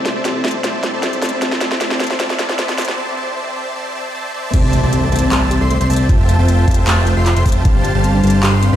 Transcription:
Already playing: F2 F3 C4 E4 A4 C5 D5 E5 A5, riser
0.05 A3, snare, closed hi-hat
0.16 C4 C5 D5 E5 A5
0.25 G4, snare, closed hi-hat
0.35 A4
0.44 A3 C4 C5 D5 E5 A5, snare, closed hi-hat
0.48 closed hi-hat
0.51 C4, closed hi-hat
0.64 A3 C4 C5 D5 E5 A5, snare, closed hi-hat
0.74 C4
0.83 A3, snare, closed hi-hat
0.93 C4 C5 D5 E5 A5
1.03 G4, snare, closed hi-hat
1.13 A4, closed hi-hat
1.22 A3 C4 C5 D5 E5 A5, snare, closed hi-hat, open hi-hat
1.29 C4, closed hi-hat
1.42 G2 A3 C4 G4 C5 D5 E5 A5, snare, closed hi-hat
1.52 C4, snare
1.61 snare, closed hi-hat
1.71 C4 C5 D5 E5 A5, snare
1.80 A3 C4 C5 D5 E5 A5, snare, closed hi-hat
1.91 C4, snare
2.00 A3, snare, closed hi-hat
2.04 closed hi-hat
2.07 C4 C5 D5 E5 A5, snare, closed hi-hat
2.19 A3 C4 C5 D5 E5 A5, snare, closed hi-hat
2.30 C4, snare
2.39 A3, snare, closed hi-hat
2.49 C4 C5 D5 E5 A5, snare
2.58 A3 C4 C5 D5 E5 A5, snare, closed hi-hat
2.69 C4, snare, closed hi-hat
2.78 A3, snare, closed hi-hat, open hi-hat
2.85 C4 C5 D5 E5 A5, snare, closed hi-hat
2.97 C4 C5 D5 E5 A5
3.17 C4 C5 D5 E5 A5
3.36 C4 C5 D5 E5 A5
3.56 C4 C5 D5 E5 A5
3.75 C4 C5 D5 E5 A5
3.95 C4 C5 D5 E5 A5
4.15 C4 C5 D5 E5 A5
4.34 C4 C5 D5 E5 A5
4.54 C2 A3 C4 C5 D5 E5 A5, kick, closed hi-hat, crash, impact
4.64 C4
4.73 A3, closed hi-hat
4.83 C2 C4 C5 D5 E5 A5
4.92 G4, closed hi-hat
5.03 A4
5.12 C2 A3 C4 C5 D5 E5 A5, closed hi-hat
5.16 closed hi-hat
5.19 C4, closed hi-hat
5.31 C2 A3 C4 C5 D5 E5 A5, clap, closed hi-hat
5.51 G4, closed hi-hat
5.61 C2 C4 A4 C5 D5 E5 C6
5.70 A3, closed hi-hat
5.81 C2 C4 C5 D5 E5 C6, closed hi-hat
5.90 C2 A3 C4 C5 D5 E5 A5, closed hi-hat, open hi-hat
5.96 closed hi-hat
6.09 F1 F4 A5, kick, closed hi-hat
6.20 A4
6.29 A3, closed hi-hat
6.39 F1 C4 F4 C5 E5 G5 A5
6.48 A3, closed hi-hat
6.67 F1 F4 C5 E5 G5 A5, kick, closed hi-hat
6.71 closed hi-hat
6.74 A4, closed hi-hat
6.87 F1 A3 F4 C5 E5 G5 A5, clap, closed hi-hat
6.97 C4
7.07 A3, closed hi-hat
7.17 F1 F4 C5 E5 G5 C6
7.26 F4, clap, closed hi-hat
7.36 F1 F4 A4 C5 E5 G5 C6, closed hi-hat
7.45 F1 A3 G5 A5, kick, closed hi-hat, open hi-hat
7.52 C4, closed hi-hat
7.65 G1 G3 C4 G4 C5 A5, kick, closed hi-hat
7.85 G4, closed hi-hat
7.95 G1 G3 G4 C5 F5 A5
8.04 C4, closed hi-hat
8.14 D4
8.23 G1 G3 C4 G4 C5 F5 A5, closed hi-hat
8.27 closed hi-hat
8.30 closed hi-hat
8.43 G1 G3 G4 C5 F5 C6, clap, closed hi-hat
8.53 C5
8.62 C4, closed hi-hat
8.73 G1 G3 D4 G4 C5 F5 B5

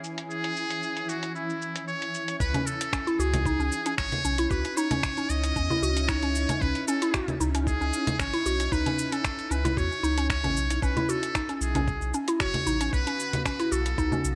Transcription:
Already playing: E3 C#4 E4
0.04 shaker
0.18 closed hi-hat, shaker
0.30 G#4, shaker
0.44 closed hi-hat
0.56 shaker
0.70 closed hi-hat, shaker
0.83 shaker
0.97 closed hi-hat, shaker
1.09 F#4, shaker
1.23 closed hi-hat, shaker
1.35 E4, shaker
1.50 shaker
1.62 shaker
1.76 closed hi-hat, shaker
1.88 C#5, shaker
2.02 closed hi-hat
2.14 shaker
2.28 closed hi-hat, shaker
2.40 C#2 C#4 D#4 E4 B4, kick, shaker
2.54 C#4, closed hi-hat, low conga
2.67 A4, shaker
2.81 closed hi-hat, shaker
2.93 C#4, finger snap, kick, shaker
3.07 E4, closed hi-hat, shaker
3.18 C#2 F#4 G#4, shaker
3.34 closed hi-hat, low conga, shaker
3.46 D#4, kick, shaker
3.59 C#2 C#4, shaker
3.72 shaker
3.86 C#4, closed hi-hat, shaker
3.98 G#1 C#5, finger snap, kick, shaker
4.12 closed hi-hat, low conga
4.24 B1 C#4, shaker
4.38 E4, closed hi-hat, shaker
4.50 C#2 F#4 B4, kick, shaker
4.65 closed hi-hat
4.77 D#4 C#5, shaker
4.91 C#4, closed hi-hat, low conga, shaker
5.03 finger snap, kick, shaker
5.17 C#4, closed hi-hat, shaker
5.30 C#2 D#5, shaker
5.44 closed hi-hat, shaker
5.56 E2 C#4, kick, shaker
5.70 E4, low conga, shaker
5.82 C#2 F#4, shaker
5.97 closed hi-hat, shaker
6.08 D#4 C#5, finger snap, kick, shaker
6.23 C#4, closed hi-hat
6.35 shaker
6.49 C#4, closed hi-hat, low conga, shaker
6.61 C#2 B4, kick, shaker
6.75 closed hi-hat
6.88 C#4 A4, shaker
7.02 E4, closed hi-hat, shaker
7.14 F#4, finger snap, kick, shaker
7.28 closed hi-hat, low conga, shaker
7.40 C#2 D#4, shaker
7.55 C#4, closed hi-hat, shaker
7.67 G#4, kick, shaker
7.81 C#2 C#4, shaker
7.93 shaker
8.07 closed hi-hat, low conga, shaker
8.19 G#1 C#4 C#5, finger snap, kick, shaker
8.33 E4, closed hi-hat
8.46 B1 F#4, shaker
8.60 closed hi-hat, shaker
8.72 C#2 D#4 B4, kick, shaker
8.86 C#4, closed hi-hat, low conga
8.99 shaker
9.12 C#4 A4, closed hi-hat, shaker
9.25 finger snap, kick, shaker
9.39 closed hi-hat, shaker
9.51 C#2 C#4 B4, shaker
9.65 E4, closed hi-hat, low conga, shaker
9.77 E2 F#4 C#5, kick, shaker
9.92 shaker
10.03 C#2 D#4, shaker
10.18 C#4, closed hi-hat, shaker
10.30 C#5, finger snap, kick, shaker
10.44 G#1 C#4, closed hi-hat, low conga
10.56 B1, shaker
10.70 closed hi-hat, shaker
10.82 B1 C#3 B3 C#4 F#4 B4, kick, shaker
10.97 E4, closed hi-hat, low conga
11.09 F#4 A4, shaker
11.23 closed hi-hat, shaker
11.35 D#4, finger snap, kick, shaker
11.49 C#4, closed hi-hat, shaker
11.55 A4
11.61 B1 G#4, shaker
11.75 C#4, closed hi-hat, low conga, shaker
11.88 kick, shaker
12.01 B1, shaker
12.14 C#4, shaker
12.28 E4, closed hi-hat, shaker
12.40 F#1 F#4 C#5, finger snap, kick, shaker
12.54 closed hi-hat, low conga
12.67 A1 D#4, shaker
12.81 C#4, closed hi-hat, shaker
12.93 B1 B4, kick, shaker
13.07 C#4, closed hi-hat
13.20 shaker
13.33 closed hi-hat, low conga, shaker
13.45 C#4 B4, finger snap, kick, shaker
13.60 E4, closed hi-hat, shaker
13.72 B1 F#4 A4, shaker
13.86 closed hi-hat, shaker
13.98 C#2 D#4, kick, shaker
14.12 C#4, low conga, shaker
14.24 B1, shaker

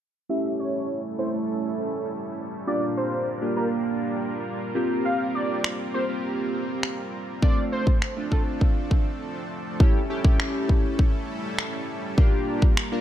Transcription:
0.29 G3 A3 C#4 E4 G4 A4 E5
0.59 C#5
1.18 A3 C#4 E4 A4 C5
1.33 A3 C#4 E4 A4
2.67 A#2 A#3 D4 F4 G4 A#4 D5
2.97 C5
3.41 A#3 D4 F4 G4
3.56 A#3 D4 F4 G4 A#4
4.75 A#3 C4 F4 G4
5.05 F5
5.35 D5
5.64 finger snap
5.94 A#3 C4 F4 G4 C5
6.09 A#3 C4 F4 G4
6.83 finger snap
7.42 F3 A3 C4 D4 F4 A4 D5, kick
7.72 C5
7.87 kick
8.02 finger snap
8.16 A3 C4 D4 F4
8.31 A3 C4 D4 F4 A4, kick
8.61 kick
8.91 kick
9.80 G3 A3 C#4 E4 G4 A4, kick
10.10 A3 C#4 E4 G4
10.24 A3 C#4 E4 G4, kick
10.40 finger snap
10.69 kick
10.99 kick
11.59 finger snap
12.18 A#2 A#3 D4 F4 G4 A#4, kick
12.62 kick
12.77 finger snap
12.92 A#3 D4 F4 A#4

